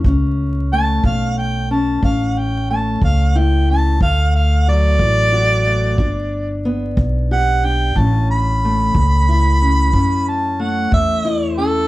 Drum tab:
BD |o--o--o--o--|o--o--o--o--|o--o--o--o--|